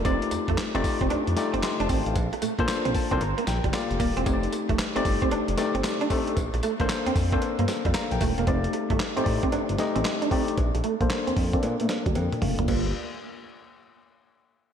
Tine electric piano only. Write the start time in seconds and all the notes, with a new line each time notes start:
0.04 A3 D#4 F4 G4 D5
0.74 A3 D#4 F4 G4 D5
1.36 A3 D#4 F4 G4 D5
1.63 D#5 C6
1.80 C5 A5
1.90 G5
2.07 A4 F5
2.59 A#3 D4 F4 A4 C5
2.95 A5
3.11 A#3 D4 F4 A4 C5
3.21 A#5
3.48 G5
3.73 A#3 F4 G4 A4 D5 F5
4.00 D5
4.26 A3 D#4 G4 C#5
4.33 D5
4.95 A3 D#4 G4 D5
5.57 A3 D#4 G4 D5
6.10 A3 D#4 G4 A4
6.80 A#3 D4 A4 C5
7.32 A#3 D4 A4 C5
7.86 A4 F5
7.95 D5 A#5
8.12 A#4 G5
8.38 A4 F5
8.47 A3 D#4 G4 D5
9.16 A3 D#4 G4 C5
9.24 D5
9.78 A3 D#4 G4 D#5
10.31 A3 D#4 G4 D5
11.01 A#3 D4 A4 C5
11.53 A#3 D4 A4 D5
12.16 A#4 G5
12.42 A4 F5
12.59 F4 D5
12.68 A#3 F4 G4 D5